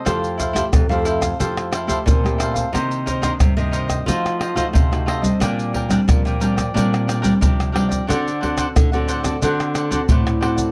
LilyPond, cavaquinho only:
\new Staff \with { instrumentName = "Cavaquinho" } { \time 4/4 \key f \major \tempo 4 = 90 <a' c'' f''>8 <e' a' c'' f''>16 <e' a' c'' f''>16 r16 <a' c'' f''>16 <e' a' c'' f''>16 <a' c'' f''>16 <a' c'' f''>8 <e' a' c'' f''>16 <e' a' c'' f''>16 <a' c'' f''>8 <e' a' c'' f''>16 <a' c'' f''>16 | <ees' bes' c'' ees''>8 <ees' bes' c'' ees''>16 <ees' bes' c'' ees''>16 r16 <bes' c'' ees''>16 <ees' bes' c'' ees''>16 <bes' c'' ees''>16 <f' a' c'' ees''>8 <f' a' c'' ees''>16 <f' a' c'' ees''>16 <f' a' c'' ees''>8 <f' a' c'' ees''>16 <a' c'' ees''>16 | <d' bes' d'' g''>8 <d' bes' d'' g''>16 <d' bes' d'' g''>16 r16 <bes' d'' g''>16 <d' bes' d'' g''>16 <bes' d'' g''>16 <d' bes' d'' g''>8 <d' bes' d'' g''>16 <d' bes' d'' g''>16 <d' bes' d'' g''>8 <d' bes' d'' g''>16 <bes' d'' g''>16 | <d' c'' d'' fis''>8 <d' c'' d'' fis''>16 <d' c'' d'' fis''>16 r16 <c'' d'' fis''>16 <d' c'' d'' fis''>16 <c'' d'' fis''>16 <d' c'' d'' fis''>8 <d' c'' d'' fis''>16 <d' c'' d'' fis''>16 <d' c'' d'' fis''>8 <d' c'' d'' fis''>16 <c'' d'' fis''>16 | }